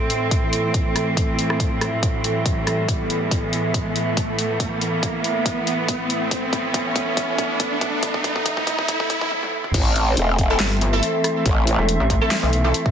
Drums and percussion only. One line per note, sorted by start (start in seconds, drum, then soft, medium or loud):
0.10 closed hi-hat soft
0.31 kick loud
0.31 closed hi-hat medium
0.53 closed hi-hat soft
0.74 kick loud
0.74 closed hi-hat medium
0.96 cross-stick soft
0.96 closed hi-hat soft
1.17 kick loud
1.17 closed hi-hat medium
1.39 closed hi-hat soft
1.50 cross-stick medium
1.60 kick medium
1.60 closed hi-hat medium
1.81 cross-stick medium
1.81 closed hi-hat soft
2.03 kick medium
2.03 closed hi-hat medium
2.24 closed hi-hat soft
2.46 kick medium
2.46 closed hi-hat medium
2.67 cross-stick medium
2.67 closed hi-hat soft
2.88 kick loud
2.88 closed hi-hat medium
3.10 closed hi-hat soft
3.31 kick loud
3.31 closed hi-hat medium
3.53 closed hi-hat medium
3.74 kick loud
3.74 closed hi-hat medium
3.96 closed hi-hat soft
4.17 kick loud
4.17 closed hi-hat medium
4.39 closed hi-hat medium
4.60 kick loud
4.60 closed hi-hat medium
4.81 closed hi-hat medium
5.03 kick loud
5.03 closed hi-hat medium
5.24 closed hi-hat medium
5.46 kick loud
5.46 closed hi-hat medium
5.67 closed hi-hat medium
5.88 kick loud
5.88 closed hi-hat medium
6.10 closed hi-hat medium
6.31 kick loud
6.31 closed hi-hat medium
6.53 kick loud
6.53 closed hi-hat medium
6.74 kick loud
6.74 closed hi-hat medium
6.96 kick loud
6.96 closed hi-hat medium
7.17 kick loud
7.17 closed hi-hat medium
7.38 kick loud
7.38 closed hi-hat medium
7.60 kick loud
7.60 closed hi-hat medium
7.81 kick loud
7.81 closed hi-hat medium
8.03 kick loud
8.03 closed hi-hat medium
8.14 kick medium
8.24 kick loud
8.24 closed hi-hat medium
8.36 kick medium
8.46 kick loud
8.46 closed hi-hat medium
8.57 kick medium
8.67 kick loud
8.67 closed hi-hat medium
8.79 kick medium
8.88 kick loud
8.88 closed hi-hat medium
9.00 kick medium
9.10 kick loud
9.10 closed hi-hat medium
9.21 kick medium
9.31 high tom medium
9.43 high tom medium
9.64 mid tom medium
9.74 kick loud
9.74 closed hi-hat medium
9.74 crash loud
9.96 closed hi-hat medium
10.17 closed hi-hat medium
10.39 kick medium
10.39 closed hi-hat medium
10.60 snare loud
10.60 clap medium
10.60 closed hi-hat medium
10.81 closed hi-hat medium
11.03 closed hi-hat medium
11.24 cross-stick medium
11.24 closed hi-hat medium
11.46 kick loud
11.46 closed hi-hat medium
11.67 closed hi-hat medium
11.89 closed hi-hat medium
12.10 kick medium
12.10 closed hi-hat medium
12.31 snare loud
12.31 clap medium
12.31 closed hi-hat medium
12.53 closed hi-hat medium
12.74 closed hi-hat medium
12.86 kick loud